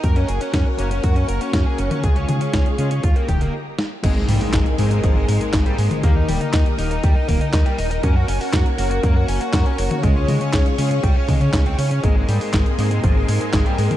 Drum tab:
CC |----------------|----------------|x---------------|----------------|
HH |xxxxx-xxxxxxx-xx|xxxxxxxxxxxx----|x-ooxxoxx-oxxxox|x-oxxxoxx-oxxxox|
CP |----------------|----------------|----x-------x---|----x-------x---|
SD |----o-------o---|----o---------o-|----o-------o---|----o-------o---|
T1 |---------------o|--o-------o-----|---------------o|--o-------o-----|
BD |o---o---o---o---|o---o---o-o-----|o---o---o---o---|o---o---o-o-o---|

CC |----------------|----------------|----------------|
HH |x-ooxxoxx-oxxxox|x-oxxxoxx-oxxxox|x-ooxxoxx-oxxxox|
CP |----x-------x---|----x-------x---|----x-------x---|
SD |----o-------o---|----o-------o---|----o-------o---|
T1 |---------------o|--o-------o-----|---------------o|
BD |o---o---o---o---|o---o---o-o-o---|o---o---o---o---|